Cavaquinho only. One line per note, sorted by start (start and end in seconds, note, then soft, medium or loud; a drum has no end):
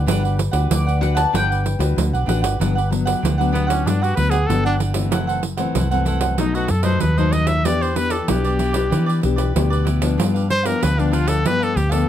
0.07 0.22 D4 medium
0.07 0.22 G4 medium
0.07 0.22 B4 medium
0.07 0.22 F#5 medium
0.23 0.37 G4 soft
0.23 0.37 B4 soft
0.23 0.38 F#5 soft
0.37 muted cavaquinho stroke soft
0.51 0.85 G4 medium
0.51 0.84 B4 medium
0.51 0.84 F#5 medium
0.86 1.00 G4 soft
0.86 1.01 B4 soft
0.86 1.01 F#5 medium
1.01 1.16 D4 soft
1.01 1.16 G4 medium
1.01 1.15 B4 soft
1.01 1.14 F#5 medium
1.15 1.32 G4 soft
1.15 1.32 B4 medium
1.15 1.31 F#5 medium
1.32 1.48 D4 medium
1.32 1.48 G4 medium
1.32 1.48 B4 medium
1.32 1.48 F#5 medium
1.49 1.64 G4 soft
1.49 1.64 B4 soft
1.49 1.64 F#5 soft
1.64 muted cavaquinho stroke soft
2.13 2.26 G4 soft
2.13 2.26 B4 soft
2.13 2.27 F#5 medium
2.26 2.42 D4 medium
2.26 2.42 G4 medium
2.26 2.42 B4 medium
2.26 2.41 F#5 medium
2.42 2.59 G4 soft
2.42 2.58 B4 soft
2.42 2.58 F#5 medium
2.59 2.74 D4 soft
2.59 2.75 G4 medium
2.59 2.75 B4 medium
2.59 2.74 F#5 medium
2.75 2.89 G4 soft
2.75 2.89 B4 medium
2.75 2.90 F#5 medium
2.90 muted cavaquinho stroke soft
3.05 3.21 G4 soft
3.05 3.22 B4 medium
3.05 3.21 F#5 medium
3.22 3.37 D4 soft
3.22 3.38 G4 medium
3.22 3.38 B4 soft
3.22 3.37 F#5 medium
3.38 3.52 G4 medium
3.38 3.52 B4 medium
3.38 3.53 F#5 medium
3.52 3.68 D4 medium
3.52 3.68 G4 medium
3.52 3.67 B4 medium
3.52 3.66 F#5 medium
3.67 3.85 G4 soft
3.67 3.84 B4 medium
3.67 3.83 F#5 medium
3.85 4.00 D4 soft
3.85 4.01 G4 soft
3.85 4.01 B4 soft
3.85 4.00 F#5 medium
4.01 4.16 G4 medium
4.01 4.16 B4 medium
4.01 4.16 F#5 medium
4.16 muted cavaquinho stroke soft
4.31 4.64 G4 medium
4.31 4.63 B4 medium
4.31 4.63 F#5 medium
4.65 4.78 G4 soft
4.65 4.79 B4 medium
4.65 4.79 F#5 medium
4.79 5.10 D4 soft
4.79 5.11 G4 soft
4.79 5.11 B4 soft
4.79 5.11 F#5 soft
5.11 5.27 E4 medium
5.11 5.27 A4 medium
5.11 5.27 C5 medium
5.11 5.26 F#5 medium
5.27 5.42 A4 medium
5.27 5.42 C5 medium
5.27 5.43 F#5 medium
5.42 muted cavaquinho stroke soft
5.57 5.74 A4 medium
5.57 5.74 C5 medium
5.57 5.73 F#5 medium
5.75 5.90 E4 soft
5.75 5.91 A4 soft
5.75 5.91 C5 soft
5.75 5.90 F#5 medium
5.91 6.06 A4 medium
5.91 6.06 C5 medium
5.91 6.06 F#5 medium
6.05 6.21 E4 medium
6.05 6.21 A4 medium
6.05 6.20 C5 medium
6.05 6.19 F#5 medium
6.20 6.37 A4 medium
6.20 6.37 C5 medium
6.20 6.37 F#5 medium
6.38 6.53 D#4 soft
6.38 6.54 A4 soft
6.38 6.54 B4 soft
6.38 6.53 D#5 medium
6.55 6.68 A4 medium
6.55 6.68 B4 medium
6.55 6.69 D#5 medium
6.69 muted cavaquinho stroke soft
6.83 7.17 A4 medium
6.83 7.17 B4 medium
6.83 7.16 D#5 medium
7.18 7.32 A4 medium
7.18 7.33 B4 medium
7.18 7.33 D#5 medium
7.32 7.64 D#4 soft
7.32 7.65 A4 soft
7.32 7.65 B4 soft
7.32 7.65 D#5 medium
7.65 7.80 E4 medium
7.65 7.81 G4 medium
7.65 7.81 B4 medium
7.65 7.80 D5 medium
7.81 7.95 G4 soft
7.81 7.96 B4 medium
7.81 7.96 D5 medium
7.96 muted cavaquinho stroke soft
8.11 8.28 G4 soft
8.11 8.28 B4 medium
8.11 8.27 D5 medium
8.28 8.44 E4 soft
8.28 8.44 G4 soft
8.28 8.44 B4 soft
8.28 8.44 D5 medium
8.45 8.58 G4 medium
8.45 8.59 B4 medium
8.45 8.59 D5 medium
8.59 8.75 E4 medium
8.59 8.74 G4 medium
8.59 8.73 B4 medium
8.59 8.71 D5 medium
8.73 8.89 G4 medium
8.73 8.90 B4 medium
8.73 8.90 D5 medium
8.90 9.06 E4 soft
8.90 9.06 G4 medium
8.90 9.06 B4 medium
8.90 9.05 D5 medium
9.06 9.20 G4 medium
9.06 9.21 B4 medium
9.06 9.21 D5 medium
9.21 muted cavaquinho stroke soft
9.36 9.70 G4 medium
9.36 9.69 B4 medium
9.36 9.69 D5 medium
9.70 9.84 G4 medium
9.70 9.85 B4 medium
9.70 9.86 D5 medium
9.85 10.17 E4 soft
9.85 10.17 G4 soft
9.85 10.17 B4 soft
9.85 10.18 D5 soft
10.18 10.33 D4 soft
10.18 10.33 G4 medium
10.18 10.34 B4 medium
10.18 10.33 F5 medium
10.34 10.48 G4 soft
10.34 10.49 B4 medium
10.34 10.49 F5 medium
10.49 muted cavaquinho stroke soft
10.63 10.80 G4 soft
10.63 10.80 B4 medium
10.63 10.80 F5 medium
10.80 10.96 D4 medium
10.80 10.96 G4 medium
10.80 10.97 B4 medium
10.80 10.96 F5 medium
10.97 11.11 G4 medium
10.97 11.12 B4 medium
10.97 11.13 F5 medium
11.12 11.28 D4 medium
11.12 11.28 G4 medium
11.12 11.26 B4 medium
11.12 11.25 F5 medium
11.26 11.43 G4 soft
11.26 11.44 B4 medium
11.26 11.43 F5 medium
11.44 11.60 D4 medium
11.44 11.60 G4 soft
11.44 11.60 B4 soft
11.44 11.59 F5 soft
11.60 11.74 G4 medium
11.60 11.75 B4 medium
11.60 11.75 F5 medium
11.75 muted cavaquinho stroke soft
11.89 12.09 G4 medium
11.89 12.09 B4 medium
11.89 12.09 F5 medium